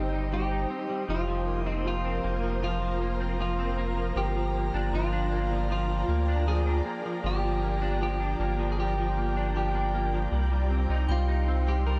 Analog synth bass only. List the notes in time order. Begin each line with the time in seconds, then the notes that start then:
Already playing: G1
1.09 F1
2.24 F1
4.16 G1
4.74 G1
4.93 G1
6.08 D2
7.24 G1
8.39 G1
10.32 C2
10.89 C2
11.09 C2